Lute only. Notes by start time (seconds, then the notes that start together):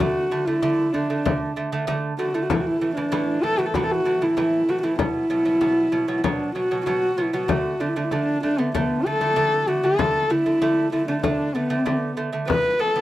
0.00 D3 A3
0.31 D3 A3
0.47 D3 A3
0.63 D3 A3
0.94 D3 A3
1.10 D3 A3
1.25 D3 A3
1.56 D3 A3
1.72 D3 A3
1.87 D3 A3
2.19 D3 A3
2.34 D3 A3
2.50 A2 E3
2.81 A2 E3
2.97 A2 E3
3.12 A2 E3
3.43 A2 E3
3.58 A2 E3
3.75 A2 E3
4.05 A2 E3
4.21 A2 E3
4.37 A2 E3
4.69 A2 E3
4.83 A2 E3
4.99 B2 F#3
5.30 B2 F#3
5.45 B2 F#3
5.61 B2 F#3
5.92 B2 F#3
6.08 B2 F#3
6.24 B2 F#3
6.55 B2 F#3
6.71 B2 F#3
6.86 B2 F#3
7.18 B2 F#3
7.33 B2 F#3
7.48 D3 A3
7.80 D3 A3
7.96 D3 A3
8.12 D3 A3
8.43 D3 A3
8.58 D3 A3
8.74 D3 A3
9.06 D3 A3
9.21 D3 A3
9.36 D3 A3
9.67 D3 A3
9.84 D3 A3
9.99 D3 A3
10.30 D3 A3
10.46 D3 A3
10.62 D3 A3
10.92 D3 A3
11.08 D3 A3
11.23 D3 A3
11.55 D3 A3
11.70 D3 A3
11.86 D3 A3
12.17 D3 A3
12.32 D3 A3
12.48 E3 B3
12.79 E3 B3
12.96 E3 B3